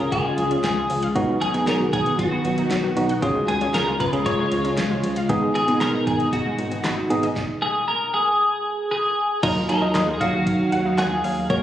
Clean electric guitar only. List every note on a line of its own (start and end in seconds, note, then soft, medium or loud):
0.00 0.12 A#4 loud
0.12 0.60 G#4 medium
0.64 1.00 G#4 medium
1.41 1.65 G#4 loud
1.67 1.74 A#4 loud
1.93 2.20 G#4 medium
2.19 2.92 F#4 medium
3.48 3.72 G#4 medium
3.74 3.98 A#4 medium
4.00 4.07 B4 loud
4.26 4.99 C#5 loud
5.55 5.81 G#4 loud
5.81 6.05 A#4 loud
6.07 6.31 G#4 loud
6.33 7.06 F#4 medium
7.62 7.87 G#4 loud
7.88 8.13 A#4 loud
8.14 8.90 G#4 loud
8.91 9.43 G#4 medium
9.43 9.67 A#4 loud
9.69 10.13 A#4 loud
10.14 10.21 G#4 medium
10.21 11.01 F#4 loud
10.98 11.46 G#4 medium
11.50 11.63 A#4 loud